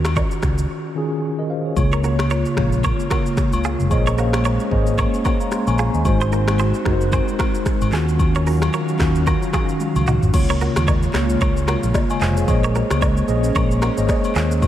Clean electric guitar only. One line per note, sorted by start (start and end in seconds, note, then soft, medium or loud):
0.17 0.36 A#4 medium
0.17 0.35 C#5 medium
1.93 2.01 A#4 medium
1.93 2.01 C#5 medium
2.04 2.15 F#4 medium
2.04 2.15 A#4 medium
2.31 2.50 A#4 medium
2.31 2.50 C#5 medium
2.85 2.96 A#4 medium
2.85 2.95 C#5 medium
3.11 3.23 F#4 medium
3.11 3.22 A#4 medium
3.65 3.76 F4 medium
3.65 3.76 G#4 medium
4.07 4.15 A#4 medium
4.07 4.15 C#5 medium
4.18 4.30 F#4 medium
4.18 4.29 A#4 medium
4.45 4.65 A#4 medium
4.45 4.64 C#5 medium
4.99 5.10 A#4 medium
4.99 5.10 C#5 medium
5.26 5.37 F#4 medium
5.26 5.36 A#4 medium
5.79 5.90 F4 medium
5.79 5.90 G#4 medium
6.21 6.30 G#4 medium
6.21 6.29 C5 medium
6.33 6.44 F#4 medium
6.33 6.44 A#4 medium
6.60 6.79 G#4 medium
6.60 6.78 C5 medium
7.13 7.24 G#4 medium
7.13 7.24 C5 medium
7.40 7.51 F#4 medium
7.40 7.51 A#4 medium
7.93 8.05 F4 medium
7.93 8.04 G#4 medium
8.36 8.44 A#4 medium
8.36 8.44 C#5 medium
8.47 8.58 F#4 medium
8.47 8.58 A#4 medium
8.74 8.93 A#4 medium
8.74 8.93 C#5 medium
9.27 9.39 F#4 medium
9.27 9.38 A#4 medium
9.54 9.65 F4 medium
9.54 9.65 G#4 medium
10.08 10.19 D#4 medium
10.08 10.19 F#4 medium
10.50 10.58 A#4 medium
10.50 10.58 C#5 medium
10.61 10.73 F#4 medium
10.61 10.72 A#4 medium
10.88 11.07 A#4 medium
10.88 11.07 C#5 medium
11.42 11.53 A#4 medium
11.42 11.52 C#5 medium
11.68 11.80 F#4 medium
11.68 11.79 A#4 medium
12.22 12.33 F4 medium
12.22 12.33 G#4 medium
12.64 12.73 A#4 medium
12.64 12.72 C#5 medium
12.76 12.87 F#4 medium
12.76 12.86 A#4 medium
13.02 13.22 A#4 medium
13.02 13.21 C#5 medium
13.56 13.67 A#4 medium
13.56 13.67 C#5 medium
13.83 13.94 F#4 medium
13.83 13.94 A#4 medium
14.36 14.48 F4 medium
14.36 14.47 G#4 medium